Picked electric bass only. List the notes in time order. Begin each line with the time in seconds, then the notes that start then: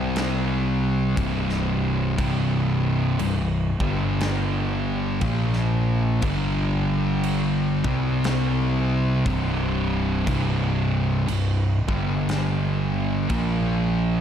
Already playing: C2
1.18 C1
2.19 C1
3.19 C1
3.80 G1
5.22 A#1
6.23 G1
7.84 C2
9.26 C1
10.27 C1
11.27 C1
11.88 G1
13.30 A#1